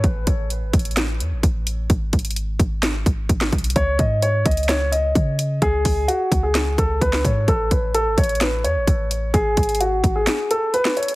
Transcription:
<<
  \new Staff \with { instrumentName = "Grand piano" } { \time 4/4 \key a \lydian \tempo 4 = 129 r1 | r1 | cis''8 dis''8 cis''8 dis''8 cis''8 dis''4. | gis'4 fis'8. gis'8. a'8 b'8 cis''8 |
a'8 b'8 a'8 cis''8 b'8 cis''4. | gis'4 fis'8. gis'8. a'8 b'8 cis''8 | }
  \new Staff \with { instrumentName = "808-style bass" } { \clef bass \time 4/4 \key a \lydian a,,8 a,,8. gis,,16 a,,4 e,16 a,,16 a,,4 | gis,,8 gis,,4 gis,,4 gis,,8 gis,,8 b,,8 | cis,8 gis,4 cis,4. cis4 | cis,8 cis,8 r8 cis,4 cis,8 cis,8 gis,8 |
a,,8 a,,8. gis,,16 a,,4 e,16 a,,16 a,,4 | gis,,8 gis,,4 gis,,8 r2 | }
  \new DrumStaff \with { instrumentName = "Drums" } \drummode { \time 4/4 <hh bd>8 <hh bd>8 hh8 <hh bd>32 hh32 hh32 hh32 <hc hh sn>8 hh8 <hh bd>8 hh8 | <hh bd>8 <hh hho bd>32 hh32 hh32 hh32 hh8 <hh bd>8 <hc hh sn>8 <hh bd>8 <hh bd>16 <hc sn>16 <hh bd>32 hh32 hh32 hh32 | <hh bd>8 <hh bd>8 hh8 <hh bd>32 hh32 hh32 hh32 <hc hh sn>8 hh8 <hh bd>8 hh8 | <hh bd>8 <hho bd>8 hh8 <hh bd>8 <hc hh sn>8 <hh bd>8 <hh bd>16 <hc sn>16 <hh bd>8 |
<hh bd>8 <hh bd>8 hh8 <hh bd>32 hh32 hh32 hh32 <hc hh sn>8 hh8 <hh bd>8 hh8 | <hh bd>8 <hh hho bd>32 hh32 hh32 hh32 hh8 <hh bd>8 <hc hh sn>8 hh8 hh16 <hc sn>16 hh32 hh32 hh16 | }
>>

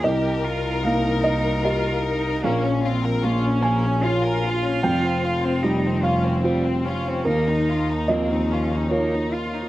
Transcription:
<<
  \new Staff \with { instrumentName = "Felt piano" } { \time 3/4 \key bes \dorian \tempo 4 = 75 << { ees''4 f''8 ees''4 r8 | f''4. aes''4. | g''4. f''4. | bes'4 ees''4 des''4 | } \\ { c,4 bes4 <g' ees''>4 | bes,,4 bes4 <f' des''>4 | f,4 g4 <f' c''>4 | ees,4 f4 <f' bes'>4 | } >> }
  \new Staff \with { instrumentName = "Cello" } { \time 3/4 \key bes \dorian g'8 f'8 ees'4 f'8 ees'8 | des'8 c'8 des'4 f'4~ | f'4 ees'8 des'8 c'8 des'8 | ees'4 c'8 des'8 ees'8 f'8 | }
  \new Staff \with { instrumentName = "Violin section" } { \time 3/4 \key bes \dorian bes'2. | bes16 des'16 f'16 bes'16 f'16 des'16 bes16 des'16 f'16 bes'16 f'16 des'16 | g16 c'16 f'16 c'16 g16 c'16 f'16 c'16 g16 c'16 f'16 c'16 | bes16 ees'16 f'16 ees'16 bes16 ees'16 f'16 ees'16 bes16 ees'16 f'16 ees'16 | }
  \new Staff \with { instrumentName = "Double bass" } { \clef bass \time 3/4 \key bes \dorian c,2. | bes,,2. | f,,2. | ees,2. | }
>>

